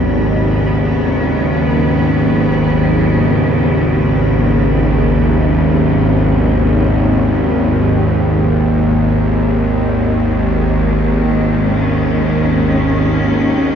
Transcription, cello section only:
0.00 8.37 G#2 medium
0.00 8.38 C#3 medium
0.00 8.38 F#3 medium
0.00 8.37 B3 medium
8.39 13.75 G#2 medium
8.90 13.75 D#3 medium
9.43 13.75 G#3 medium
11.61 13.75 C#4 medium

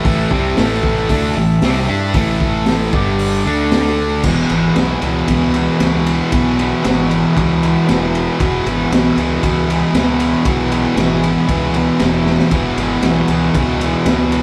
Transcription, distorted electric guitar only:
0.05 0.30 A2 medium
0.05 0.31 E3 loud
0.05 0.31 A3 medium
0.30 0.56 C3 medium
0.30 0.57 G3 medium
0.30 0.57 C4 loud
0.57 1.09 A2 medium
0.57 1.09 E3 medium
0.57 1.09 A3 loud
1.10 1.35 D3 medium
1.10 1.36 A3 medium
1.10 1.36 D4 loud
1.37 1.58 A2 medium
1.37 1.57 E3 medium
1.63 1.88 C3 loud
1.63 1.87 G3 loud
1.63 1.88 C4 loud
1.88 2.13 G3 medium
1.88 2.14 D4 medium
1.88 2.14 G4 loud
2.15 2.92 A2 medium
2.15 2.93 E3 medium
2.15 2.93 A3 loud
2.93 3.44 G2 medium
2.93 3.44 D3 medium
2.93 3.45 G3 loud
3.45 4.23 D3 medium
3.45 4.23 A3 medium
3.45 4.24 D4 loud
4.23 4.76 E2 medium
4.23 4.53 B2 medium
4.23 4.50 E3 medium
4.50 4.80 E3 medium
4.54 4.77 B2 medium
4.76 5.28 E2 medium
4.76 5.05 B2 medium
4.76 5.02 E3 medium
5.03 5.29 B2 medium
5.03 5.32 E3 medium
5.28 5.79 E2 medium
5.28 5.56 B2 medium
5.32 5.53 E3 medium
5.53 5.80 B2 medium
5.53 5.82 E3 medium
5.79 6.31 E2 medium
5.79 6.32 B2 medium
5.79 6.35 E3 medium
6.31 6.83 E2 medium
6.31 6.60 B2 medium
6.35 6.57 E3 medium
6.57 6.84 B2 medium
6.57 6.86 E3 medium
6.83 7.34 E2 medium
6.83 7.12 B2 medium
6.83 7.09 E3 medium
7.10 7.35 B2 medium
7.10 7.38 E3 medium
7.35 7.87 E2 medium
7.35 7.65 B2 medium
7.35 7.62 E3 medium
7.62 7.88 B2 medium
7.62 7.91 E3 medium
7.87 8.39 E2 medium
7.87 8.40 B2 medium
7.87 8.43 E3 medium
8.39 8.91 E2 medium
8.39 8.68 B2 loud
8.43 8.65 E3 loud
8.65 8.92 B2 medium
8.65 8.94 E3 medium
8.91 9.42 E2 medium
8.91 9.19 B2 medium
8.91 9.16 E3 medium
9.16 9.43 B2 medium
9.16 9.45 E3 medium
9.42 9.92 E2 medium
9.42 9.70 B2 loud
9.42 9.67 E3 loud
9.67 9.94 B2 medium
9.67 9.97 E3 medium
9.93 10.44 E2 medium
9.93 10.45 B2 medium
9.97 10.48 E3 medium
10.44 10.96 E2 loud
10.44 10.72 B2 medium
10.44 10.69 E3 medium
10.70 10.97 B2 medium
10.70 10.99 E3 medium
10.96 11.47 E2 medium
10.96 11.24 B2 medium
10.96 11.21 E3 medium
11.22 11.48 B2 medium
11.22 11.51 E3 medium
11.47 11.99 E2 medium
11.47 11.76 B2 loud
11.51 11.73 E3 medium
11.73 12.00 B2 medium
11.73 12.03 E3 medium
11.99 12.50 E2 medium
11.99 12.51 B2 medium
11.99 12.54 E3 medium
12.51 13.01 E2 medium
12.51 12.80 B2 medium
12.51 12.77 E3 loud
12.77 13.02 B2 medium
12.77 13.05 E3 medium
13.01 13.54 E2 medium
13.01 13.31 B2 medium
13.06 13.28 E3 medium
13.28 13.56 B2 medium
13.28 13.58 E3 medium
13.55 14.06 E2 medium
13.55 13.83 B2 medium
13.59 13.81 E3 loud
13.81 14.07 B2 medium
13.81 14.09 E3 medium
14.06 14.43 E2 medium
14.06 14.43 B2 medium
14.06 14.43 E3 medium

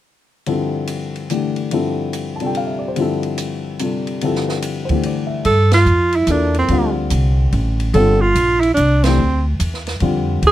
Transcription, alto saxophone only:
5.46 5.71 A4 medium
5.74 6.17 F4 medium
6.16 6.32 E4 medium
6.31 6.57 D4 medium
6.58 6.96 C4 medium
7.94 8.22 A4 medium
8.21 8.62 F4 medium
8.60 8.74 E4 medium
8.74 9.05 D4 medium
9.04 9.45 C4 medium
10.47 10.52 G#4 medium

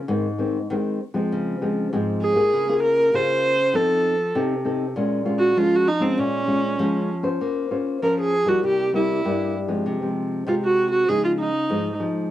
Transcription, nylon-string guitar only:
0.08 0.66 G#2 medium
0.08 0.26 D#3 medium
0.08 0.26 G#3 medium
0.08 0.26 C4 medium
0.38 0.56 D#3 medium
0.38 0.56 G#3 medium
0.38 0.57 C4 medium
0.70 0.98 D#3 medium
0.70 0.98 G#3 medium
0.70 0.99 C4 medium
1.14 1.55 F3 medium
1.14 1.55 G#3 medium
1.14 1.56 C4 medium
1.32 1.89 C#3 medium
1.61 1.87 F3 medium
1.61 1.87 G#3 medium
1.61 1.87 C4 medium
1.93 2.50 G#2 medium
1.93 2.33 F3 medium
1.93 2.33 G#3 medium
1.93 2.33 C4 medium
2.35 2.68 A#3 medium
2.35 2.68 F4 medium
2.35 2.68 G#4 medium
2.53 3.11 C#3 medium
2.69 3.09 A#3 medium
2.69 3.09 F4 medium
2.69 3.10 G#4 medium
3.14 3.72 C#3 medium
3.14 3.53 A#3 medium
3.14 3.53 F4 medium
3.14 3.53 G#4 medium
3.73 4.32 F3 medium
3.73 4.14 C4 medium
3.73 4.14 D#4 medium
3.73 4.14 A4 medium
4.35 4.94 C3 medium
4.35 4.53 C4 medium
4.35 4.54 D#4 medium
4.35 4.54 A4 medium
4.65 4.85 C4 medium
4.65 4.85 D#4 medium
4.65 4.86 A4 medium
4.96 5.54 A#2 medium
4.96 5.22 G#3 medium
4.96 5.23 C#4 medium
4.96 5.23 F4 medium
5.25 5.52 G#3 medium
5.25 5.52 C#4 medium
5.25 5.52 F4 medium
5.57 6.15 F3 medium
5.57 5.86 G#3 medium
5.57 5.86 C#4 medium
5.57 5.86 F4 medium
6.00 6.43 G#3 medium
6.00 6.43 C#4 medium
6.00 6.43 F4 medium
6.18 6.76 A#2 medium
6.47 6.74 G#3 medium
6.47 6.74 C#4 medium
6.47 6.74 F4 medium
6.79 7.38 F3 medium
6.79 7.08 G#3 medium
6.79 7.08 C#4 medium
6.79 7.09 F4 medium
7.23 7.65 C#4 medium
7.23 7.66 F4 medium
7.23 7.66 C5 medium
7.41 7.99 A#3 medium
7.71 7.97 C#4 medium
7.71 7.97 F4 medium
7.71 7.97 C5 medium
8.02 8.61 F3 medium
8.02 8.31 C#4 medium
8.02 8.32 F4 medium
8.02 8.32 C5 medium
8.45 8.88 G3 medium
8.45 8.88 A#3 medium
8.45 8.88 E4 medium
8.63 9.22 C3 medium
8.93 9.20 G3 medium
8.93 9.20 A#3 medium
8.93 9.20 E4 medium
9.25 9.83 G2 medium
9.25 9.54 G3 medium
9.25 9.54 A#3 medium
9.25 9.54 E4 medium
9.68 10.01 F3 medium
9.68 10.01 G#3 medium
9.68 10.02 C4 medium
9.86 10.44 C3 medium
10.02 10.43 F3 medium
10.02 10.43 G#3 medium
10.02 10.43 C4 medium
10.47 11.05 C3 medium
10.47 11.04 G#3 medium
10.47 11.04 C4 medium
11.09 11.67 C#3 medium
11.09 11.48 F3 medium
11.09 11.48 G#3 medium
11.09 11.49 D#4 medium
11.70 12.28 G#2 medium
11.70 11.88 F3 medium
11.70 11.88 G#3 medium
11.70 11.88 D#4 medium
12.00 12.28 F3 medium
12.00 12.29 G#3 medium
12.00 12.29 D#4 medium

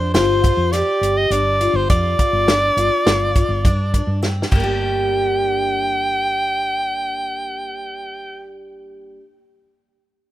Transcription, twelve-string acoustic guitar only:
0.00 0.11 D4 medium
0.15 0.41 F4 medium
0.44 0.70 F4 medium
0.73 1.25 G4 medium
1.31 1.57 D4 medium
1.61 1.87 F4 medium
1.90 2.16 F4 medium
2.19 2.45 F4 medium
2.48 2.74 D4 medium
2.77 3.30 F4 medium
3.36 3.62 F4 medium
3.65 3.91 D4 medium
3.94 4.20 D4 medium
4.23 4.49 C4 medium
4.52 9.18 G3 medium
4.52 9.20 A#3 medium
4.60 9.23 D4 medium
4.60 9.24 G4 medium

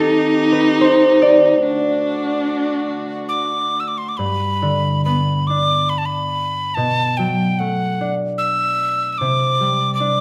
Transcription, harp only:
0.00 2.19 A4 medium
0.00 0.52 B4 medium
0.52 0.87 B4 medium
0.81 2.79 C5 medium
1.22 3.26 D5 medium
4.19 6.80 G2 medium
4.62 6.80 D3 soft
5.06 8.16 B3 soft
5.50 8.00 D4 soft
6.77 9.25 B2 medium
7.19 9.25 F#3 soft
7.60 10.21 A3 soft
8.01 10.00 D4 soft
9.21 10.21 C3 medium
9.61 10.21 G3 soft
10.00 10.21 D4 soft

